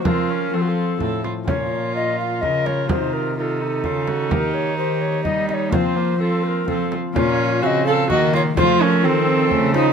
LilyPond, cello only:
\new Staff \with { instrumentName = "Cello" } { \clef bass \time 3/4 \key bes \minor \tempo 4 = 127 f4 f4 a,8 r8 | bes,2 des4 | c2 des4 | ees2 g4 |
f2 f8 r8 | bes,4 des4 ees4 | f4 ees4 des4 | }